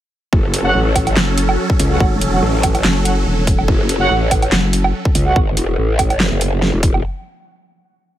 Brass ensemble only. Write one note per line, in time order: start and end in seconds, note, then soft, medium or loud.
0.65 0.78 F#4 loud
0.65 0.78 C#5 medium
0.65 0.78 F#5 loud
1.91 2.04 F#4 medium
1.91 2.04 C#5 medium
1.91 2.04 F#5 medium
2.33 2.40 F#4 medium
2.33 2.40 C#5 medium
2.33 2.40 F#5 medium
3.05 3.14 F#4 medium
3.05 3.14 C#5 medium
3.05 3.14 F#5 medium
4.00 4.13 F#4 loud
4.00 4.13 C#5 medium
4.00 4.13 F#5 loud
5.26 5.39 F#4 medium
5.26 5.39 C#5 medium
5.26 5.39 F#5 medium